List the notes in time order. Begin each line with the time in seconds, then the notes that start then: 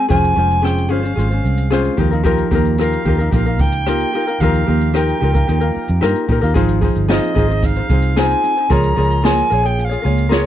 Already playing: G#3 C4 G#4
0.09 F1 F3 C#4 F4 G#4 C5 G#5, kick, shaker
0.24 shaker
0.35 F1 G#3 C#4 F4 G#4 C5
0.51 shaker
0.62 C4 C#4 F4 G#4 C5 G5, cross-stick, shaker
0.78 shaker
0.89 G1 C#4 F4 G#4 C5 F5
1.03 C#4 C5, shaker
1.16 G#1 G#3 C#4 F4 G#4 C5, shaker
1.30 C#4 C5, shaker
1.44 C2 C4, shaker
1.57 shaker
1.70 G#3 C#4 F4 G#4 C5, cross-stick, shaker
1.85 shaker
1.97 D#2 F3 D#4 F4 G4 A#4, kick
2.11 D#4 F4 A#4, shaker
2.23 F3 D#4 F4 G4 A#4, kick, shaker
2.38 shaker
2.51 D#2 A#3 D#4 F4 G4 A#4, kick, shaker
2.65 shaker
2.78 D#4 F4 G4 A#4 F5, cross-stick, shaker
2.93 shaker
3.05 D#2 D#4 F4 G4 A#4, kick
3.18 D#4 F4 A#4, shaker
3.31 A#1 A#3 D#4 F4 G4 A#4 F5, kick, shaker
3.46 D#4 F4 A#4, shaker
3.59 C#2 D#4 G5, kick, shaker
3.72 shaker
3.86 A#3 D#4 F4 G4 A#4, cross-stick, shaker
4.00 shaker
4.13 D#4 F4 G4 A#4, shaker
4.27 D#4 F4 A#4, shaker
4.40 D#2 F3 D#4 F4 G4 A#4 F5, kick, shaker
4.54 shaker
4.66 D#2 A#3 D#4 F4 G4 A#4
4.81 shaker
4.93 D#4 F4 G4 A#4 G5, cross-stick, shaker
5.08 cross-stick, shaker
5.21 C#2 D#4 F4 G4 A#4, shaker
5.34 D#4 F4 A#4, kick, shaker
5.47 D#2 A#3 D#4 F4 G4 A#4, shaker
5.60 D#4 F4 A#4, shaker
5.75 D#4, muted fingered electric bass stroke
5.88 F2, shaker
6.01 G2 A#3 D#4 F4 G4 A#4, cross-stick, shaker
6.16 shaker
6.28 A#2 D#4 F4 G4 A#4, kick
6.41 D#2 D#4 F4 G4 A#4, shaker
6.54 G#1 F3 D#4 F4 G#4 C5, kick, shaker
6.69 shaker
6.81 D#4 F4 G#4 C5, kick
6.96 G1, shaker
7.08 C4 D#4 F4 G#4 C5 D#5, snare, shaker
7.23 snare, shaker
7.35 G#1 D#4 F4 G#4 C5, kick, shaker
7.49 D#4 C5, shaker
7.63 D#4 F5, kick, shaker
7.76 D#4 C5, shaker
7.89 C2 C4 D#4 F4 G#4 C5, kick, shaker
8.02 shaker
8.16 D#4 F4 G#4 C5 G#5, snare, shaker
8.30 shaker
8.43 C4, shaker
8.57 D#4 C5, shaker
8.69 C#2 F3 F4 G#4 A#4 C#5 A#5, kick, shaker
8.84 shaker
8.96 C#2 D#4 F4 G#4 A#4 C#5
9.10 F4, shaker
9.23 A#3 F4 G#4 A#4 C#5 G#5, snare, shaker
9.38 snare, shaker
9.50 A#1 F4 G#4 A#4 C#5, shaker
9.63 F4 G#4 C#5 G5, shaker
9.78 F4 G5, shaker
9.84 F5
9.89 F4 G#4 C#5, shaker
10.02 C#2 A#3 F4 G#4 A#4 C#5
10.18 shaker
10.29 F4 G#4 A#4 C#5, snare, shaker